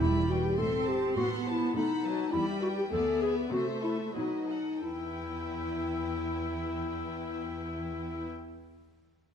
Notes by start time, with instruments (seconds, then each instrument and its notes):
0.00 cello section E2, viola section G3, clarinet E4, violin section G4 E5 B5
0.29 clarinet F#4, violin section B4 G5
0.45 clarinet G4
0.57 cello section A2, viola section C4, clarinet A4, violin section A4 E5 C6
0.85 clarinet G4, violin section C5 A5
1.16 cello section A2, viola section B3, clarinet F#4, violin section A4 F#5 C6
1.46 clarinet E4, violin section C5 A5
1.75 cello section B2, viola section A3, clarinet D#4, violin section A4 F#5 B5
2.04 viola section F#3, violin section B4 D#5 A5
2.32 cello section E2, viola section G3, clarinet E4, violin section G4 E5 B5
2.62 clarinet F#4, violin section B4 G5
2.78 clarinet G4
2.92 cello section D2, viola section B3, violin section G#4 D5 E5, clarinet A4
3.22 clarinet G#4, violin section B4 D5 E5
3.52 cello section C3, viola section A3, clarinet F#4, violin section C5 E5
3.82 clarinet E4, violin section A4 C5 E5
4.14 cello section B2, viola section F#3, clarinet D#4, violin section F#4 B4 D#5
4.48 violin section A4 D#5 F#5
4.82 cello section E2, clarinet E4, viola section E4, violin section B4 G5